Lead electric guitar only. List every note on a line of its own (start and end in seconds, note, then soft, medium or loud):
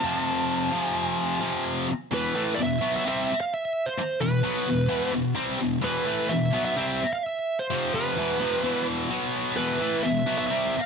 0.00 0.79 A5 loud
0.79 1.63 G#5 loud
2.14 2.54 B4 medium
2.55 2.60 D5 medium
2.63 2.95 E5 loud
2.96 3.07 E5 loud
3.08 3.40 E5 loud
3.40 3.54 F5 medium
3.54 3.88 E5 loud
3.86 4.21 C5 medium
4.21 5.11 B4 medium
5.84 6.32 B4 loud
6.29 6.63 E5 loud
6.65 6.76 E5 loud
6.77 7.12 E5 loud
7.13 7.23 F5 loud
7.23 7.59 E5 loud
7.59 7.92 C5 medium
7.95 8.84 B4 medium
9.57 10.05 B4 medium
10.03 10.37 E5 loud
10.38 10.46 E5 loud
10.47 10.81 E5 loud
10.81 10.86 F5 loud